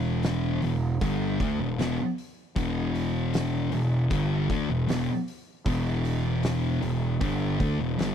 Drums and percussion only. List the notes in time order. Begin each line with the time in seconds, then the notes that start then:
0.23 snare, open hi-hat
0.62 open hi-hat
1.01 kick, open hi-hat
1.40 kick, open hi-hat
1.79 snare, open hi-hat
2.18 open hi-hat
2.56 kick, open hi-hat
2.95 open hi-hat
3.34 snare, open hi-hat
3.72 open hi-hat
4.11 kick, open hi-hat
4.50 kick, open hi-hat
4.89 snare, open hi-hat
5.28 open hi-hat
5.66 kick, open hi-hat
6.05 open hi-hat
6.43 snare, open hi-hat
6.82 open hi-hat
7.21 kick, open hi-hat
7.60 kick, open hi-hat
7.99 snare, open hi-hat